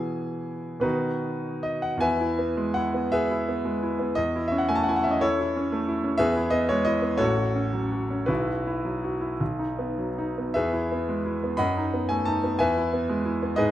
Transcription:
0.00 0.78 B2 soft
0.00 0.78 E3 soft
0.00 0.78 B3 soft
0.00 0.79 E4 soft
0.00 0.79 G#4 medium
0.00 0.82 G#5 medium
0.80 1.98 B2 soft
0.80 1.98 D#3 soft
0.80 1.99 B3 soft
0.80 1.61 D#4 medium
0.80 1.61 F#4 medium
0.80 1.64 B4 medium
1.63 1.84 D#5 medium
1.82 2.02 F#5 medium
1.97 4.11 E2 medium
1.97 2.71 B4 medium
1.97 2.75 G#5 medium
2.02 2.71 E5 medium
2.21 2.50 E4 soft
2.39 2.68 B3 soft
2.57 2.87 G#3 soft
2.74 3.05 E4 soft
2.74 3.11 F#5 medium
2.94 3.47 B3 soft
3.12 4.14 G#4 medium
3.12 4.14 B4 medium
3.12 4.17 E5 medium
3.31 3.59 E4 soft
3.49 3.76 B3 soft
3.65 3.93 G#3 soft
3.83 4.11 E4 soft
3.99 4.17 B3 soft
4.15 6.15 E2 medium
4.15 4.48 D#5 medium
4.36 4.63 E4 medium
4.48 4.80 C#4 soft
4.48 4.61 E5 medium
4.58 4.69 F#5 medium
4.68 4.98 A3 soft
4.68 4.77 G#5 medium
4.75 4.83 A5 medium
4.83 4.90 F#5 medium
4.89 5.16 E4 soft
4.89 4.97 G#5 medium
4.96 5.05 F#5 medium
5.04 5.55 C#4 soft
5.04 5.13 E5 medium
5.11 5.21 D#5 medium
5.21 5.39 E4 medium
5.21 5.53 A4 medium
5.21 5.55 C#5 medium
5.40 5.66 E4 medium
5.56 5.82 C#4 medium
5.72 5.97 A3 medium
5.88 6.13 E4 medium
6.04 6.20 C#4 medium
6.18 7.18 E2 medium
6.18 6.50 G#4 medium
6.18 6.50 B4 medium
6.18 6.52 E5 loud
6.36 6.63 E4 medium
6.50 6.79 B3 soft
6.50 6.68 D#5 medium
6.69 6.97 G#3 soft
6.69 6.86 C#5 medium
6.85 7.14 E4 soft
6.85 7.20 D#5 medium
7.02 7.20 B3 soft
7.18 8.25 A1 medium
7.18 7.36 F#4 medium
7.18 8.24 A4 medium
7.18 8.27 C#5 medium
7.37 7.66 F#4 soft
7.55 7.84 C#4 soft
7.73 8.03 F#3 soft
7.92 8.22 F#4 soft
8.10 8.29 C#4 soft
8.26 9.36 B1 medium
8.26 8.65 E4 medium
8.26 8.47 F#4 medium
8.26 10.16 B4 medium
8.49 8.78 F#4 soft
8.67 8.96 E4 soft
8.85 9.14 F#3 soft
9.04 9.33 F#4 soft
9.21 9.40 E4 soft
9.40 10.51 B1 soft
9.59 9.90 D#4 soft
9.79 10.10 B3 soft
9.98 10.29 F#3 soft
10.18 10.48 D#4 soft
10.38 10.55 B3 soft
10.54 11.57 E2 medium
10.54 11.55 G#4 medium
10.54 11.55 B4 medium
10.54 11.59 E5 medium
10.73 11.01 E4 soft
10.92 11.19 B3 soft
11.09 11.36 G#3 soft
11.26 11.52 E4 soft
11.44 11.60 B3 soft
11.57 12.56 F#2 medium
11.57 12.05 D#5 medium
11.57 12.06 F#5 medium
11.57 12.08 B5 medium
11.77 12.03 D#4 soft
11.94 12.20 B3 soft
12.09 12.36 A3 soft
12.09 12.26 G#5 medium
12.25 12.53 D#4 soft
12.25 12.59 A5 medium
12.44 12.60 B3 soft
12.59 13.55 E2 medium
12.59 13.54 B4 medium
12.59 13.54 E5 medium
12.59 13.57 G#5 medium
12.78 13.03 E4 soft
12.93 13.19 B3 soft
13.09 13.35 G#3 soft
13.25 13.51 E4 medium
13.43 13.58 B3 soft
13.56 13.71 G#2 medium
13.56 13.71 G#4 medium
13.56 13.71 B4 medium
13.56 13.71 D#5 medium

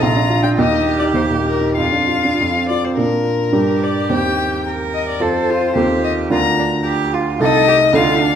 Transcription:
0.02 0.56 A#1 medium
0.02 0.60 F4 medium
0.02 0.43 A#5 medium
0.16 0.38 D4 soft
0.30 0.52 F4 soft
0.43 0.57 D4 soft
0.43 0.49 G5 medium
0.57 1.12 D#2 medium
0.57 1.77 G4 medium
0.57 0.99 D#5 medium
0.71 0.94 D#4 soft
0.86 1.09 G4 soft
0.99 1.24 D#4 soft
0.99 1.05 D5 medium
1.13 1.75 D#2 soft
1.13 1.22 C5 medium
1.29 1.55 A#2 soft
1.45 1.71 G4 soft
1.45 1.76 A#4 medium
1.61 1.77 D#4 soft
1.76 2.38 F2 soft
1.76 2.68 F4 soft
1.76 2.68 F5 medium
1.92 2.18 D4 soft
2.08 2.33 F4 soft
2.25 2.40 D4 soft
2.40 2.97 F2 soft
2.55 2.79 C4 soft
2.69 2.94 F4 soft
2.69 2.87 D5 medium
2.85 2.99 C4 soft
2.85 2.97 C5 soft
2.97 3.52 A#2 soft
2.97 3.51 D4 soft
2.97 3.53 F4 soft
2.97 3.85 A#4 medium
2.97 3.52 A#4 soft
3.52 4.08 G2 soft
3.52 4.08 D4 soft
3.52 4.08 G4 soft
3.52 4.63 G4 medium
3.52 4.09 A#4 soft
3.84 4.11 D5 medium
4.09 5.18 D#2 soft
4.09 5.18 C4 soft
4.09 5.18 G4 soft
4.09 5.18 C5 soft
4.09 4.66 G5 medium
4.67 5.23 A#4 medium
4.94 5.07 D#5 medium
5.09 5.23 D5 medium
5.19 5.74 F2 soft
5.19 5.74 C4 soft
5.19 5.74 F4 soft
5.19 5.75 A4 soft
5.19 5.52 A4 soft
5.19 6.03 C5 medium
5.50 5.76 F4 medium
5.75 6.29 D#2 soft
5.75 6.29 C4 soft
5.75 6.29 F4 soft
5.75 6.30 G4 medium
5.75 6.30 A4 soft
6.04 6.12 D#5 medium
6.30 7.36 D2 medium
6.30 7.37 D4 soft
6.30 7.37 F4 soft
6.30 6.39 F4 medium
6.30 7.37 A#4 soft
6.30 6.86 A#5 medium
6.59 6.67 D4 medium
6.85 7.15 G4 medium
7.14 7.42 F4 medium
7.39 7.92 C2 medium
7.39 7.92 A3 soft
7.39 7.93 D#4 soft
7.39 7.93 A4 soft
7.39 7.67 A4 medium
7.39 7.97 D#5 medium
7.68 7.76 G4 medium
7.93 8.35 D2 medium
7.93 8.35 A3 medium
7.93 8.35 D4 soft
7.93 8.23 F4 medium
7.93 8.35 A4 soft
7.93 8.35 F5 medium
8.22 8.35 D4 medium

